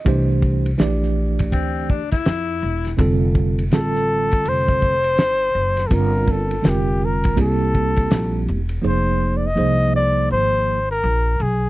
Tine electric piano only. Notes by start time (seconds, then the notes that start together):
Already playing: D#5
0.05 E3 A3 D4 G4 C5
0.78 E3 A3 D4 G4 D5
2.97 D3 G3 C4 F4 A4
3.71 D3 G3 C4 F4 G#4
3.81 A4
5.89 D3 G3 C4 F4 A#4
6.62 D3 G3 C4 F4 A#4
7.36 G3 A#3 C4 E4 G4
8.82 F3 A#3 D#4 G#4 C5
9.55 F3 A#3 D#4 G#4 C5